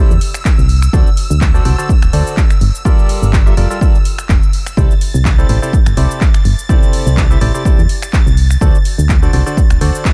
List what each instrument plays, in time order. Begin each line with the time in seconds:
Already playing: synth stab C3 E4 G4 A4 C5 D5, string machine E6
0.10 fm bass E2, shaker
0.21 open hi-hat
0.34 finger snap, shaker
0.45 kick, clap, shaker
0.58 fm bass C2, shaker
0.69 open hi-hat
0.82 finger snap, shaker
0.93 fm bass D2, synth stab D3 D4 F#4 A4 C5 D5, kick, shaker
1.07 shaker
1.17 open hi-hat
1.30 fm bass D2, shaker
1.41 kick, clap, shaker
1.54 synth stab D3 D4 F#4 A4 C5 D5, shaker
1.65 fm bass C2, synth stab D3 D4 F#4 A4 C5 D5, open hi-hat
1.78 synth stab D3 D4 F#4 A4 C5 D5, shaker
1.89 kick, shaker
2.02 fm bass D1, finger snap, shaker
2.13 fm bass D2, synth stab D3 D4 F#4 A4 C5 D5, open hi-hat
2.27 shaker
2.37 kick, clap, shaker
2.50 finger snap, shaker
2.61 fm bass G1, open hi-hat
2.75 shaker
2.85 synth stab G3 F4 G4 A4 A#4 D5, kick, shaker
2.99 shaker
3.09 open hi-hat
3.22 fm bass G1, shaker
3.33 kick, clap, shaker
3.46 synth stab G3 F4 G4 A4 A#4 E5, shaker
3.57 fm bass F1, synth stab G3 F4 G4 A4 A#4 D5, open hi-hat
3.70 synth stab G3 F4 G4 A4 A#4 D5, shaker
3.81 synth stab G3 A4 A#4 D5, kick, shaker
3.95 shaker
4.05 open hi-hat
4.18 finger snap, shaker
4.29 fm bass F1, kick, clap, shaker
4.43 shaker
4.53 open hi-hat
4.66 finger snap, shaker
4.77 fm bass C2, synth stab C3 E4 G4 A4 C5 D5, string machine A6, kick, shaker
4.91 shaker
5.01 open hi-hat
5.14 fm bass C2, shaker
5.25 kick, clap, shaker
5.38 synth stab C3 E4 G4 A4 C5 D5, shaker
5.49 fm bass A1, synth stab C3 E4 G4 A4 C5 D5, open hi-hat
5.62 synth stab C3 E4 G4 A4 C5 D5, shaker
5.73 kick, shaker
5.86 fm bass G1, finger snap, shaker
5.97 fm bass C2, synth stab C3 E4 G4 A4 C5 D5, open hi-hat
6.11 shaker
6.21 kick, clap, shaker
6.34 finger snap, shaker
6.45 fm bass G1, open hi-hat
6.59 shaker
6.69 synth stab C3 E4 G4 A4 C5 D5, kick, shaker
6.83 shaker
6.93 open hi-hat
7.06 fm bass C2, shaker
7.17 kick, clap, shaker
7.30 synth stab C3 E4 G4 A4 C5 E5, shaker
7.41 fm bass A1, synth stab C3 E4 G4 A4 C5 D5, open hi-hat
7.54 synth stab C3 E4 G4 A4 C5 D5, shaker
7.65 synth stab E4 G4 A4 C5 D5, kick, shaker
7.78 fm bass E2, shaker
7.89 open hi-hat
8.02 finger snap, shaker
8.13 kick, clap, shaker
8.26 fm bass C2, shaker
8.37 open hi-hat
8.51 finger snap, shaker
8.61 fm bass D2, synth stab D3 D4 F#4 A4 C5 D5, kick, shaker
8.75 shaker
8.85 open hi-hat
8.98 fm bass D2, shaker
9.09 kick, clap, shaker
9.22 synth stab D3 D4 F#4 A4 C5 D5, shaker
9.33 fm bass C2, synth stab D3 D4 F#4 A4 C5 D5, open hi-hat
9.46 synth stab D3 D4 F#4 A4 C5 D5, shaker
9.57 kick, shaker
9.70 fm bass D1, finger snap, shaker
9.81 fm bass D2, synth stab D3 D4 F#4 A4 C5 D5, open hi-hat
9.95 shaker
10.05 kick, clap, shaker